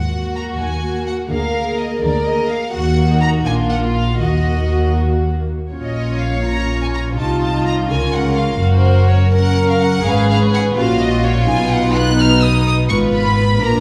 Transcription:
Already playing: D#2 D#3 F#4 F#5
0.11 A#3 F#4
0.36 A#5
0.58 D#2 D#3 G#5
0.83 A#3 F#4
1.07 F#5
1.30 D2 D3 A#3 G#4 A#4 F5
1.55 A#3 G#4
1.80 D#5
2.02 D2 D3 A#4 D5
2.26 A#3 G#4 D#5
2.50 F5
2.73 D#2 D#3 A#3 F#4 F#5
3.11 D#4
3.21 A#5
3.46 A#1 A#2 A#3 D4 F4 G#5
3.70 F#5
3.84 F4
3.95 F5
4.19 D#2 D#3 A#3 F#4 D#5
5.70 A#1 A#2 C#4 F4 C#5
5.83 D#5
6.20 F5
6.44 C#4 F4 A#5
6.82 G#5
6.95 A#5
7.17 C2 C3 D#4 F4 A5
7.42 A5
7.66 A#5
7.89 C#2 C#3 C#4 A#4 G#5
8.14 F#5
8.37 F5
8.60 F#1 F#2 C#4 F#4 A#4
8.74 C5
9.09 C#5
9.33 C#4 A#4 F#5
9.70 F5
9.81 F#5
10.04 G#1 G#2 C#4 G#4 B4 F5
10.30 F5
10.54 F#5
10.75 A#1 A#2 C#4 F4 F#4 F5
11.02 D#5
11.25 C#5
11.46 B1 B2 B3 D#4 G#5
11.72 F#5
11.96 F#6
12.19 D#4 F6
12.43 D#6
12.67 D#6
12.89 G#1 G#2 B3 F4 B4 C#6
13.14 B5
13.61 A#1 A#2 D4 F4 A#4 A#5

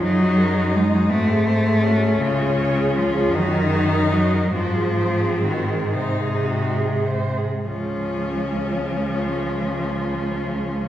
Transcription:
0.02 F#2 F#3 D#4
0.22 F#4
0.39 A#4
0.56 F#4
0.75 G#3 D#4
0.96 F#4
1.09 G#2 A3 C4 F#4
1.30 G#4
1.46 C4 C5
1.68 G#4
1.82 C#4
1.87 F#4
2.03 G#4
2.20 C#2 C#3 F4
2.41 G#4
2.60 C#5
2.78 G#4
2.96 F3 F4
3.14 G#4
3.33 F#2 D#3 D#4 F#4
3.55 A#4
3.75 F#4
3.93 A#4
4.12 F#3 F#4
4.34 A#4
4.53 G#2 F3 C4 F#4
4.75 G#4
4.98 C5
5.20 G#4
5.43 D#3 F#4
5.68 G#4
5.94 C3 D#4 C5
6.20 G#4
6.45 F#4
6.75 G#4
7.06 C5
7.37 G#4
7.66 C#2 F3 G#3 C#4

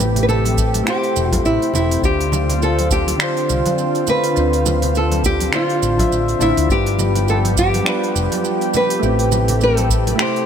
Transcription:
Already playing: A1 C3 A3 C4 E4 G4 B4
0.00 shaker
0.16 open hi-hat, low conga, shaker
0.23 B4
0.29 A4, shaker
0.45 open hi-hat, high conga, shaker
0.58 kick, shaker
0.74 open hi-hat, high conga, shaker
0.83 A3 E4, finger snap, shaker
0.88 G4 C5
1.03 open hi-hat, shaker
1.16 E1, shaker
1.30 F4, kick, open hi-hat, high conga, shaker
1.45 A1 E4, shaker
1.62 open hi-hat, shaker
1.74 E1 E4, low conga, shaker
1.91 open hi-hat, shaker
2.01 D2 D3 C4 D4 F4 G4, kick, shaker
2.05 F4 C5
2.21 open hi-hat, shaker
2.32 high conga, low conga, shaker
2.50 open hi-hat, low conga, shaker
2.62 A4, shaker
2.79 open hi-hat, high conga, shaker
2.91 G4, kick, shaker
3.08 open hi-hat, high conga, shaker
3.17 D3 D4, finger snap, shaker
3.21 F4 C5
3.37 open hi-hat, shaker
3.49 C2, shaker
3.66 open hi-hat, high conga, shaker
3.78 shaker
3.95 open hi-hat, shaker
4.07 B4, low conga, shaker
4.24 open hi-hat, shaker
4.33 D2 D3 D4, shaker
4.37 C4 F4
4.53 open hi-hat, shaker
4.66 high conga, low conga, shaker
4.82 open hi-hat, low conga, shaker
4.95 A4, shaker
5.12 open hi-hat, high conga, shaker
5.23 G4, kick, shaker
5.40 open hi-hat, high conga, shaker
5.52 D3 D4 F4 C5, finger snap, shaker
5.69 open hi-hat, shaker
5.82 A1, shaker
5.97 D3 D4 F4 E5, kick, open hi-hat, high conga, shaker
6.12 A1, shaker
6.28 open hi-hat, shaker
6.39 A1 D3 D4 E4 F4 E5, low conga, shaker
6.57 D2, open hi-hat, shaker
6.67 F3 G3 B3 D4 G4, kick, shaker
6.71 F4 G4 B4
6.86 open hi-hat, shaker
6.99 high conga, low conga, shaker
7.16 open hi-hat, low conga, shaker
7.28 A4, shaker
7.45 open hi-hat, high conga, shaker
7.57 G4, kick, shaker
7.74 open hi-hat, high conga, shaker
7.83 G3 D4, finger snap, shaker
7.87 F4 B4
8.04 open hi-hat, shaker
8.15 F1, shaker
8.32 open hi-hat, high conga, shaker
8.44 shaker
8.61 open hi-hat, shaker
8.74 B4, low conga, shaker
8.90 open hi-hat, shaker
8.99 A1 C3 A3 E4, shaker
9.03 C4 G4
9.19 open hi-hat, shaker
9.32 high conga, low conga, shaker
9.48 open hi-hat, low conga, shaker
9.61 A4, shaker
9.77 open hi-hat, high conga, shaker
9.90 kick, shaker
10.07 open hi-hat, high conga, shaker
10.16 A3 E4, finger snap, shaker
10.20 G4 C5
10.36 open hi-hat, shaker

